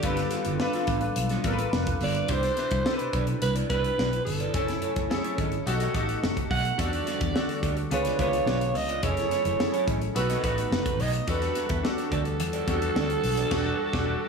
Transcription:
Already playing: G4 A4
0.03 G1 G3 B3 D4 F4 A4 B4, kick, closed hi-hat
0.17 muted clean electric guitar stroke, snare, closed hi-hat
0.31 B3 F4 A4, snare, closed hi-hat
0.45 G1 B3 F4 A4, closed hi-hat
0.60 D4 F4 A4 B4, muted clean electric guitar stroke, snare
0.73 B3 F4 A4, snare, closed hi-hat
0.87 A1 B3 F4 B4, kick, closed hi-hat
1.01 muted clean electric guitar stroke, closed hi-hat
1.16 B1, muted clean electric guitar stroke, closed hi-hat
1.29 B3 F4 A4, snare, closed hi-hat
1.44 A1 B3 D4 F4 A4 A#4 B4, kick, closed hi-hat
1.52 B4
1.59 muted clean electric guitar stroke, closed hi-hat
1.73 F1, snare
1.87 muted clean electric guitar stroke, kick, closed hi-hat
2.01 G1 B3 F4 A4 D5, open hi-hat
2.15 muted clean electric guitar stroke, closed hi-hat
2.28 C2 B2 C3 D4 E4 G4 B4 C5 D5, kick, closed hi-hat
2.43 muted clean electric guitar stroke, snare, closed hi-hat
2.57 E4 B4 E5, snare, closed hi-hat
2.71 C2 E4 B4 E5, kick, closed hi-hat
2.85 D4 E4 G4 A4, muted clean electric guitar stroke, snare
2.93 B4
2.99 muted clean electric guitar stroke, closed hi-hat
3.13 B1 E4 B4 D5, kick, closed hi-hat
3.27 muted clean electric guitar stroke, closed hi-hat
3.41 C2 B4, muted clean electric guitar stroke, closed hi-hat
3.55 E4 B4 D5, closed hi-hat
3.69 C2 D4 E4 G4 B4 D5, kick, closed hi-hat
3.83 muted clean electric guitar stroke, closed hi-hat
3.98 B1 E4 B4 D5, snare
4.12 muted clean electric guitar stroke, closed hi-hat
4.24 G1 A4, muted clean electric guitar stroke, open hi-hat
4.40 E4 B4 D5, closed hi-hat
4.54 F#1 F#3 A3 C#4 E4 A4 C#5 G#5, kick, closed hi-hat
4.68 muted clean electric guitar stroke, snare, closed hi-hat
4.82 E4 A4 C#5, closed hi-hat
4.96 F#1 E4 A4 C#5, kick, closed hi-hat
5.10 C#4 E4 G#4 A4, muted clean electric guitar stroke, snare
5.24 E4 A4 C#5, closed hi-hat
5.38 G#1 E4 A4 D#5, kick, closed hi-hat
5.52 muted clean electric guitar stroke, closed hi-hat
5.66 B1 A3 B3 D#4 F#4 G4 A4, muted clean electric guitar stroke, closed hi-hat
5.80 G4 A4 D#5, closed hi-hat
5.94 A1 D#4 F#4 G4 A4 F#5, kick, closed hi-hat
6.08 muted clean electric guitar stroke, closed hi-hat
6.23 F#1, snare
6.36 muted clean electric guitar stroke, kick, closed hi-hat
6.50 B1 G4 A4 D#5 F#5, kick, open hi-hat
6.65 muted clean electric guitar stroke, closed hi-hat
6.78 E2 D3 E3 G3 D4 F#4 G4 A4 D5 F#5, kick, closed hi-hat
6.92 muted clean electric guitar stroke, closed hi-hat
7.06 G4 A4 E5, snare, closed hi-hat
7.20 E2 G4 A4 E5, kick, closed hi-hat
7.34 D4 F#4 G4 A4, muted clean electric guitar stroke, snare
7.48 muted clean electric guitar stroke, snare, closed hi-hat
7.63 D2 G4 A4 D5, kick, closed hi-hat
7.77 muted clean electric guitar stroke, closed hi-hat
7.91 C#2 C#3 B3 D4 F4 G#4 B4 C#5, muted clean electric guitar stroke, closed hi-hat
8.05 F4 B4 D5, snare, closed hi-hat
8.18 C#2 D4 F4 G#4 B4 C#5 D5, kick, closed hi-hat
8.32 muted clean electric guitar stroke, closed hi-hat
8.46 B1 F4 B4 D5, snare
8.61 muted clean electric guitar stroke, closed hi-hat
8.74 C#2 D#5, muted clean electric guitar stroke, open hi-hat
8.89 F4 B4 D5, closed hi-hat
9.02 F#1 F#3 A3 C#4 E4 G#4 A4 C#5, kick, closed hi-hat
9.17 muted clean electric guitar stroke, snare, closed hi-hat
9.31 E4 A4 C#5, snare, closed hi-hat
9.45 F#1 E4 A4 C#5, closed hi-hat
9.59 C#4 E4 G#4 A4, muted clean electric guitar stroke, snare
9.73 E4 A4 C#5, closed hi-hat
9.87 A1 E4 A4 D#5, kick, closed hi-hat
10.02 muted clean electric guitar stroke, closed hi-hat
10.15 B1 A3 B3 D#4 F#4 G4 A4 B4, muted clean electric guitar stroke, closed hi-hat
10.30 G4 A4 D#5, snare, closed hi-hat
10.43 A1 D#4 F#4 G4 A4 B4 F#5, kick, closed hi-hat
10.58 muted clean electric guitar stroke, closed hi-hat
10.72 F#1, snare
10.86 muted clean electric guitar stroke, kick, closed hi-hat
11.00 B1 G4 A4 D#5, open hi-hat
11.13 muted clean electric guitar stroke, closed hi-hat
11.27 E2 E3 G3 D4 F#4 G4 A4 B4 D5 F#5, kick, closed hi-hat
11.42 muted clean electric guitar stroke, snare, closed hi-hat
11.55 G4 A4 E5, snare, closed hi-hat
11.69 E2 G4 A4 E5, kick, closed hi-hat
11.83 D4 F#4 G4 A4, muted clean electric guitar stroke, snare
11.97 muted clean electric guitar stroke, snare, closed hi-hat
12.11 D2 G4 A4 D5, kick, closed hi-hat
12.25 muted clean electric guitar stroke, closed hi-hat
12.40 E2, muted clean electric guitar stroke, closed hi-hat
12.53 G4 A4 D5, closed hi-hat
12.67 E2 D4 F#4 G4 A4 D5, kick, closed hi-hat
12.81 muted clean electric guitar stroke, closed hi-hat
12.95 D2 G4 A4 D5, snare
13.09 muted clean electric guitar stroke, closed hi-hat
13.23 B1, muted clean electric guitar stroke, open hi-hat
13.37 G4 A4 D5, closed hi-hat
13.51 E1 D4 F#4 G4 A4 D5, kick, snare, crash
13.93 E1 D4 F#4 G4 A4 D5, kick, snare

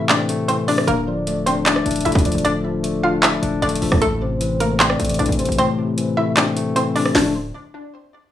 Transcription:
Already playing: A2 C3 E3 A3 C4
0.09 C4 D4 D5, clap, closed hi-hat
0.29 A3, closed hi-hat
0.48 E3 C4 C5, closed hi-hat
0.68 C3 D4 D5, open hi-hat
0.78 cross-stick
0.88 D1 D3 A#3 A#4, closed hi-hat
1.07 F3 D5
1.27 A3, closed hi-hat
1.46 C4 D4 C5, closed hi-hat
1.66 D4 D5 E5, clap, closed hi-hat
1.76 cross-stick
1.86 D1 D4, closed hi-hat
1.91 closed hi-hat
1.96 closed hi-hat
2.01 closed hi-hat
2.05 D1 A3 E4 E5, closed hi-hat
2.12 kick, closed hi-hat
2.19 closed hi-hat
2.25 F3 D5, closed hi-hat
2.32 D1, closed hi-hat
2.38 closed hi-hat
2.44 D3 D4 D5, closed hi-hat
2.64 F3
2.83 A3, closed hi-hat
3.03 D4 F4 F5
3.23 E4 D5 E5, clap, closed hi-hat
3.43 D1 D4, closed hi-hat
3.62 D1 A3 D4 D5, closed hi-hat
3.69 closed hi-hat
3.75 closed hi-hat
3.82 D1 F3, open hi-hat
3.92 kick, cross-stick
4.01 A1 A2 A3 A4, closed hi-hat
4.21 C3 C5
4.41 E3, closed hi-hat
4.60 A3 A#3 A#4, closed hi-hat
4.79 C4 C5 D5, clap, closed hi-hat
4.90 cross-stick
4.99 A1 A3, closed hi-hat
5.05 closed hi-hat
5.09 closed hi-hat
5.14 closed hi-hat
5.19 A1 E3 D4 D5, closed hi-hat
5.26 A1, closed hi-hat
5.32 closed hi-hat
5.39 C3 C5, closed hi-hat
5.45 A1, closed hi-hat
5.52 closed hi-hat
5.58 A2 C4 C5, closed hi-hat
5.78 C3
5.98 E3, closed hi-hat
6.17 A3 E4 E5
6.37 C4 D4 D5, clap, closed hi-hat
6.57 A3, closed hi-hat
6.76 E3 C4 C5, closed hi-hat
6.95 C3 D4 D5, open hi-hat
7.06 cross-stick
7.15 D1 D3 F3 A3 D4 D5, snare, open hi-hat

